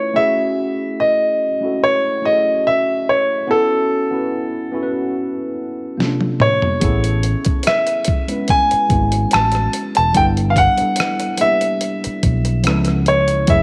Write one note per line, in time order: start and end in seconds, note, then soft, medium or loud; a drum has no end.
0.00 0.13 A3 medium
0.00 0.15 C#4 medium
0.00 0.16 E4 medium
0.00 0.17 F4 medium
0.00 0.17 B4 medium
0.00 0.17 C#5 medium
0.13 1.43 A3 medium
0.13 1.44 C#4 medium
0.13 1.44 E4 medium
0.13 1.45 F#4 medium
0.13 1.01 E5 medium
0.18 1.46 G#4 medium
1.00 1.85 D#5 medium
1.61 2.16 A3 medium
1.61 2.16 C#4 medium
1.61 2.17 E4 medium
1.61 2.17 F#4 medium
1.65 2.18 A4 medium
1.84 2.26 C#5 medium
2.21 3.34 A3 medium
2.21 3.35 C#4 medium
2.21 3.35 E4 medium
2.21 3.36 F#4 medium
2.21 2.63 D#5 medium
2.26 2.32 G#4 medium
2.32 3.39 A4 medium
2.67 3.09 E5 medium
3.09 3.47 C#5 medium
3.47 4.04 B3 medium
3.47 4.04 C#4 medium
3.47 4.05 E4 medium
3.47 4.05 F#4 medium
3.47 6.50 A4 medium
3.51 4.06 A4 medium
4.11 4.66 B3 medium
4.11 4.67 C#4 medium
4.11 4.67 E4 medium
4.11 4.68 F#4 medium
4.15 4.68 B4 medium
4.72 5.98 B3 medium
4.72 5.98 C#4 medium
4.72 5.99 E4 medium
4.72 5.99 F#4 medium
4.76 4.82 A4 medium
4.83 6.03 B4 medium
5.97 6.73 C3 medium
5.97 6.72 A#3 medium
5.97 6.06 C#4 medium
5.97 6.74 F4 medium
5.97 snare soft
6.02 6.76 D4 medium
6.02 6.74 A4 medium
6.21 high tom medium
6.40 7.69 C#5 medium
6.40 mid tom medium
6.62 floor tom medium
6.80 7.34 A1 medium
6.80 8.11 B3 medium
6.80 8.11 C#4 medium
6.80 8.12 E4 medium
6.80 8.10 G#4 medium
6.80 kick medium
6.80 closed hi-hat medium
6.84 8.12 A4 medium
7.04 closed hi-hat soft
7.23 closed hi-hat medium
7.45 muted fretless electric bass stroke soft
7.45 kick medium
7.45 closed hi-hat soft
7.63 8.52 E5 medium
7.63 closed hi-hat medium
7.67 cross-stick loud
7.87 closed hi-hat soft
8.05 kick medium
8.05 closed hi-hat medium
8.27 8.83 G#3 medium
8.27 8.83 B3 medium
8.27 8.84 C#4 medium
8.27 8.84 E4 medium
8.27 closed hi-hat soft
8.32 8.85 B4 medium
8.48 9.35 G#5 loud
8.48 kick medium
8.48 closed hi-hat medium
8.71 muted fretless electric bass stroke soft
8.71 closed hi-hat soft
8.88 9.24 G#1 medium
8.88 10.01 G#3 medium
8.88 10.01 B3 medium
8.88 10.02 C#4 medium
8.88 10.02 E4 medium
8.88 kick medium
8.88 closed hi-hat medium
8.93 10.03 F#4 medium
9.12 closed hi-hat soft
9.31 9.67 A1 medium
9.31 9.92 A5 medium
9.31 cross-stick loud
9.31 closed hi-hat medium
9.52 cross-stick soft
9.52 closed hi-hat soft
9.73 closed hi-hat medium
9.95 10.13 E1 medium
9.95 10.16 A5 medium
9.95 closed hi-hat soft
10.13 10.67 G1 loud
10.13 10.70 G3 medium
10.13 10.71 B3 medium
10.13 10.71 D4 medium
10.13 10.72 E4 medium
10.13 10.25 G5 loud
10.13 kick loud
10.13 closed hi-hat medium
10.17 10.72 A4 medium
10.37 closed hi-hat soft
10.50 10.57 F5 medium
10.56 11.43 F#5 loud
10.56 kick medium
10.56 closed hi-hat medium
10.77 11.32 G3 medium
10.77 11.33 B3 medium
10.77 11.33 D4 medium
10.77 11.34 E4 medium
10.77 closed hi-hat soft
10.81 11.34 A4 medium
10.81 muted fretless electric bass stroke soft
10.96 closed hi-hat medium
11.00 cross-stick loud
11.20 closed hi-hat soft
11.38 12.64 G3 medium
11.38 11.46 A#3 soft
11.38 12.65 D4 medium
11.38 12.65 E4 medium
11.38 13.12 E5 medium
11.38 closed hi-hat medium
11.42 12.63 B3 medium
11.42 12.66 G4 medium
11.61 closed hi-hat soft
11.81 closed hi-hat medium
12.04 muted fretless electric bass stroke soft
12.04 closed hi-hat soft
12.23 12.67 B1 medium
12.23 kick medium
12.23 closed hi-hat medium
12.45 closed hi-hat soft
12.63 13.38 F3 medium
12.63 13.39 B3 medium
12.63 13.39 C#4 medium
12.63 13.40 E4 medium
12.63 closed hi-hat medium
12.67 13.51 C#2 medium
12.67 13.40 A4 medium
12.67 cross-stick medium
12.85 cross-stick soft
12.85 closed hi-hat soft
13.06 13.50 C#5 medium
13.06 closed hi-hat medium
13.28 closed hi-hat soft
13.46 13.63 F#1 medium
13.46 13.63 F#3 medium
13.46 13.63 A3 medium
13.46 13.63 C#4 medium
13.46 13.63 E4 medium
13.46 13.63 E5 medium
13.46 kick loud
13.46 closed hi-hat medium
13.51 13.63 G#4 medium